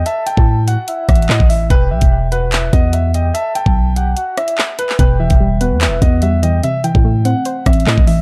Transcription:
<<
  \new Staff \with { instrumentName = "Soft synth lead" } { \time 4/4 \key e \minor \tempo 4 = 146 a''4. fis''8 e''8 fis''4 e''8 | g''4. fis''8 e''8 fis''4 g''8 | a''4. g''8 fis''8 e''8 r4 | g''4. fis''8 e''8 fis''4 g''8 |
r1 | }
  \new Staff \with { instrumentName = "Grand piano" } { \time 4/4 \key e \minor e''8 g''4 fis''4 e''8 dis''8 e''8 | b'8 e''4 b'4 dis''8 e''8 dis''8 | e''8 g''4 fis''4 e''4 b'8 | b'8 e''4 b'4 dis''8 e''8 dis''8 |
e''8 g''4 fis''4 e''8 dis''8 e''8 | }
  \new Staff \with { instrumentName = "Synth pluck" } { \clef bass \time 4/4 \key e \minor r1 | r1 | r1 | b,8 e8 g8 b8 b'8 b8 g8 e8 |
c8 e8 a8 c'8 c''8 c'8 a8 e8 | }
  \new Staff \with { instrumentName = "808-style bass" } { \clef bass \time 4/4 \key e \minor r8. a,4 r8. a,,8 a,16 a,,8. | e,,8 b,,16 e,,4.~ e,,16 e,4. | r8. b,,4~ b,,16 r2 | e,,8. e,,4 e,16. e,,16. e,4. |
r8. a,4 r8. a,,8 a,16 a,,8. | }
  \new DrumStaff \with { instrumentName = "Drums" } \drummode { \time 4/4 hh8 hh16 bd16 r8 hh8 \tuplet 3/2 { hh16 r16 r16 <hh bd ss>16 hh16 hh16 } hc16 bd16 hho8 | <hh bd>8. <hh bd>16 r8 hh8 <hc hh>8 <hh bd>8 hh8 hh8 | hh8 hh16 bd16 r8 hh8 hh8 <hh ss>16 hh16 hc8 hh16 hc16 | <hh bd>8. <hh bd>16 r8 hh8 <hc hh>8 <hh bd>8 hh8 hh8 |
hh8 hh16 bd16 r8 hh8 \tuplet 3/2 { hh16 r16 r16 <hh bd ss>16 hh16 hh16 } hc16 bd16 hho8 | }
>>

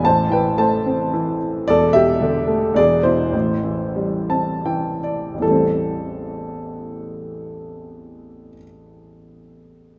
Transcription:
<<
  \new Staff \with { instrumentName = "Grand piano" } { \time 3/4 \key a \minor \tempo 4 = 87 << { r2. | r2. | r4. a''8 g''8 d''8 | r2. |
r2. | } \\ { <c'' a''>8 <b' g''>8 <c'' a''>4. r8 | <a' d''>8 <g' e''>4. <gis' d''>8 <e' c''>8~ | <e' c''>2~ <e' c''>8 r8 | a'2.~ |
a'2. | } >> }
  \new Staff \with { instrumentName = "Grand piano" } { \clef bass \time 3/4 \key a \minor <a,, a,>8 e8 a8 c'8 e4 | <e,, e,>8 b,8 d8 a8 <e,, e,>8 b,8 | <a,, a,>8 e8 g8 c'8 e4 | <a,, e, e g a c'>2.~ |
<a,, e, e g a c'>2. | }
>>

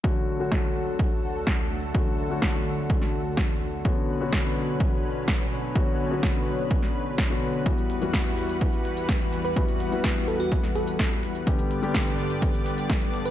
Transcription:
<<
  \new Staff \with { instrumentName = "FM electric piano" } { \time 4/4 \key d \major \tempo 4 = 126 r1 | r1 | r1 | r1 |
r2. r8. b'16 | b'16 r4 r16 a'16 fis'16 r8 a'8. r8. | r2. r8. b'16 | }
  \new Staff \with { instrumentName = "Grand piano" } { \time 4/4 \key d \major <d fis a fis'>8. <d fis a fis'>16 r2. | <d fis a fis'>8. <d fis a fis'>16 r2. | <d b cis' fis'>8. <d b cis' fis'>16 r2. | <d b cis' fis'>8. <d b cis' fis'>16 r2 r16 <d b cis' fis'>8. |
<e g b fis'>8. <e g b fis'>16 r2. | <e g b fis'>8. <e g b fis'>16 r2. | <d g b g'>8. <d g b g'>16 r2. | }
  \new Staff \with { instrumentName = "Analog synth pad" } { \clef bass \time 4/4 \key d \major << { a'1~ | a'1 | b'1~ | b'1~ |
b'1~ | b'1 | d''1 | } \\ { <d, d a fis'>1~ | <d, d a fis'>1 | <b, d fis cis'>1~ | <b, d fis cis'>1 |
<e, e g fis'>1~ | <e, e g fis'>1 | <g, d b g'>1 | } >> }
  \new DrumStaff \with { instrumentName = "Drums" } \drummode { \time 4/4 bd4 <bd sn>4 bd4 <bd sn>4 | bd4 <bd sn>4 bd16 sn8. <bd sn>4 | bd4 <bd sn>4 bd4 <bd sn>4 | bd4 <bd sn>4 bd16 sn8. <bd sn>4 |
<hh bd>16 hh16 hho16 hh16 <hh bd sn>16 hh16 hho16 hh16 <hh bd>16 hh16 hho16 hh16 <hh bd sn>16 hh16 hho16 hh16 | <hh bd>16 hh16 hho16 hh16 <hh bd sn>16 hh16 hho16 hh16 <hh bd>16 <hh sn>16 hho16 hh16 <hh bd sn>16 hh16 hho16 hh16 | <hh bd>16 hh16 hho16 hh16 <hh bd sn>16 hh16 hho16 hh16 <hh bd>16 hh16 hho16 hh16 <hh bd sn>16 hh16 hho16 hh16 | }
>>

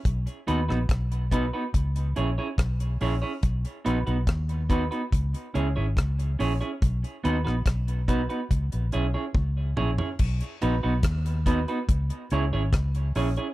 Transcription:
<<
  \new Staff \with { instrumentName = "Clean electric guitar" } { \time 4/4 \key b \major \tempo 4 = 71 r8 <b dis' fis' b'>16 <b dis' fis' b'>16 r8 <b dis' fis' b'>16 <b dis' fis' b'>16 r8 <cis' e' gis' cis''>16 <cis' e' gis' cis''>16 r8 <cis' e' gis' cis''>16 <cis' e' gis' cis''>16 | r8 <b dis' fis' b'>16 <b dis' fis' b'>16 r8 <b dis' fis' b'>16 <b dis' fis' b'>16 r8 <cis' e' gis' cis''>16 <cis' e' gis' cis''>16 r8 <cis' e' gis' cis''>16 <cis' e' gis' cis''>16 | r8 <b dis' fis' b'>16 <b dis' fis' b'>16 r8 <b dis' fis' b'>16 <b dis' fis' b'>16 r8 <cis' e' gis' cis''>16 <cis' e' gis' cis''>16 r8 <cis' e' gis' cis''>16 <cis' e' gis' cis''>16 | r8 <b dis' fis' b'>16 <b dis' fis' b'>16 r8 <b dis' fis' b'>16 <b dis' fis' b'>16 r8 <cis' e' gis' cis''>16 <cis' e' gis' cis''>16 r8 <cis' e' gis' cis''>16 <cis' e' gis' cis''>16 | }
  \new Staff \with { instrumentName = "Fingered electric bass" } { \clef bass \time 4/4 \key b \major b,,16 r16 dis,16 ais,,16 b,,8. r16 cis,8 ais,,16 r16 b,,8 ais,,16 r16 | b,,16 r16 ais,,16 b,,16 dis,8. r16 cis,16 r16 cis,16 gis,,16 cis,8 ais,,16 r16 | b,,16 r16 dis,16 ais,,16 b,,8. r16 cis,16 ais,,16 b,,16 r16 cis,8 ais,,16 r16 | b,,16 r16 ais,,16 b,,16 dis,8. r16 cis,16 r16 cis,16 gis,,16 cis,8 ais,,16 r16 | }
  \new DrumStaff \with { instrumentName = "Drums" } \drummode { \time 4/4 <hh bd>16 hh16 hh16 ss16 <hh bd ss>16 hh16 <hh bd>8 <hh bd>16 hh16 hh8 <hh bd ss>16 hh16 hho8 | <hh bd>16 hh16 hh16 hh16 <hh bd ss>16 hh16 <hh bd>16 hh16 <hh bd>16 hh16 hh8 <hh bd ss>16 hh16 hho16 hh16 | <hh bd>16 hh16 hh16 ss16 <hh bd ss>16 hh16 <hh bd>16 hh16 <hh bd>16 hh16 hh8 <bd tommh>8 toml16 tomfh16 | <cymc bd>16 hh16 hh8 <hh bd ss>16 hh16 <hh bd>16 hh16 <hh bd>16 hh16 hh8 <hh bd ss>16 hh16 hho16 hh16 | }
>>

